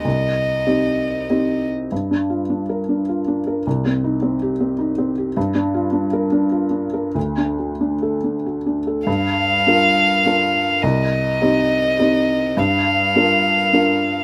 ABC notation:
X:1
M:3/4
L:1/8
Q:1/4=103
K:Gm
V:1 name="Violin"
e4- e z | z6 | z6 | z6 |
z6 | f6 | e6 | f6 |]
V:2 name="Felt piano"
C,,2 [CEG]2 [CEG]2 | (3G,, D F (3D B D (3F D B | (3C,, C E (3C G C (3E C G | (3G,, D F (3D B D (3F D B |
(3D,, D ^F (3D A D (3F D A | G,,2 [DFB]2 [DFB]2 | C,,2 [CEG]2 [CEG]2 | G,,2 [DFB]2 [DFB]2 |]